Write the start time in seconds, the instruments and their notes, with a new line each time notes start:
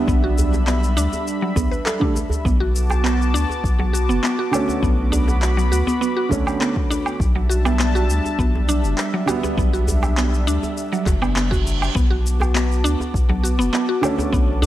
Already playing: felt piano D3 G3 B3, analog synth pad G3 D4 E5
0.07 analog synth bass B1, synth pluck B3, analog synth pad B5, kick, shaker
0.24 synth pluck F#4
0.38 djembe bass, shaker
0.53 djembe slap, djembe tone, shaker
0.67 synth pluck B3, clap, shaker
0.83 shaker
0.97 analog synth bass D2, synth pluck D4, shaker
1.13 djembe tone, shaker
1.28 shaker
1.42 synth pluck F#3
1.56 synth pluck B3, kick, djembe slap, djembe bass, shaker
1.71 synth pluck B4, shaker
1.86 synth pluck A4, clap, shaker
2.00 felt piano D3 G3 A3, synth pluck D4, kick
2.15 djembe tone, shaker
2.30 djembe bass, shaker
2.45 analog synth bass B1, synth pluck B3, analog synth pad B3 F#4 A5 D6, kick, shaker
2.60 synth pluck F#4
2.76 shaker
2.90 djembe slap, djembe tone, low woodblock, shaker
3.04 synth pluck B3, clap, shaker
3.22 shaker
3.34 analog synth bass D2, synth pluck D4, shaker
3.49 djembe tone, shaker
3.64 analog synth bass B1, kick, shaker
3.79 synth pluck F#3, djembe tone
3.93 synth pluck F#4, djembe slap, shaker
4.09 analog synth bass F#1, synth pluck B3, shaker
4.23 synth pluck B3, clap, shaker
4.39 synth pluck F#4
4.51 felt piano D3 A3 C#4, djembe slap, low woodblock, shaker
4.69 djembe tone, shaker
4.82 analog synth bass B1, synth pluck B3, analog synth pad B5, kick, shaker
5.12 synth pluck D4, djembe bass, shaker
5.28 djembe slap, djembe tone, shaker
5.42 clap, shaker
5.57 synth pluck F#3, shaker
5.71 analog synth bass D2, synth pluck F#4, shaker
5.87 synth pluck B3, djembe tone, shaker
6.01 synth pluck B3, shaker
6.17 synth pluck F#4
6.29 felt piano D3 A3 C#4, kick, djembe slap, djembe bass, shaker
6.47 low woodblock, shaker
6.61 synth pluck B3, clap, shaker
6.76 kick
6.90 synth pluck D4, djembe tone, shaker
7.06 low woodblock, shaker
7.20 analog synth bass B1, analog synth pad G3 D4 E5 A5, kick, shaker
7.36 synth pluck F#3
7.49 synth pluck F#4, shaker
7.65 synth pluck B3, djembe slap, djembe tone, low woodblock, shaker
7.79 synth pluck B3, clap, shaker
7.95 synth pluck F#4, shaker
8.09 analog synth bass D2, shaker
8.25 djembe tone, shaker
8.38 analog synth bass B1, synth pluck B3, kick, shaker
8.55 djembe tone
8.69 synth pluck D4, djembe slap, shaker
8.84 analog synth bass F#1, shaker
8.98 clap, shaker
9.14 synth pluck F#3
9.26 felt piano D3 G3, synth pluck F#4, djembe slap, low woodblock, shaker
9.30 felt piano B3
9.43 synth pluck B3, djembe tone, shaker
9.57 analog synth bass B1, synth pluck B3, kick, shaker
9.73 synth pluck F#4, shaker
9.88 djembe bass, shaker
10.03 djembe slap, djembe tone, low woodblock, shaker
10.17 synth pluck B3, clap, shaker
10.34 shaker
10.47 analog synth bass D2, synth pluck D4, shaker
10.63 djembe tone, shaker
10.77 reverse cymbal, shaker
10.92 synth pluck F#3, shaker
11.06 analog synth bass F#1, synth pluck F#4, kick, clap, djembe slap, djembe bass, shaker
11.22 analog synth bass F#1, synth pluck B3, low woodblock, shaker
11.36 synth pluck B3, clap, shaker
11.51 synth pluck F#4, kick, shaker
11.65 djembe tone, shaker
11.82 low woodblock, shaker
11.95 analog synth bass B1, synth pluck B3, analog synth pad B3 F#4 A5 D6, kick, shaker
12.10 synth pluck F#4
12.27 shaker
12.40 djembe slap, djembe tone, low woodblock, shaker
12.54 synth pluck B3, clap, shaker
12.72 shaker
12.84 analog synth bass D2, synth pluck D4, shaker
13.00 djembe tone, shaker
13.14 analog synth bass B1, kick, shaker
13.29 synth pluck F#3, djembe tone
13.43 synth pluck F#4, djembe slap, shaker
13.59 analog synth bass F#1, synth pluck B3, shaker
13.73 synth pluck B3, clap, shaker
13.89 synth pluck F#4
14.01 felt piano D3 A3 C#4, djembe slap, low woodblock, shaker
14.18 djembe tone, shaker
14.33 analog synth bass B1, synth pluck B3, kick, shaker
14.62 synth pluck D4, djembe bass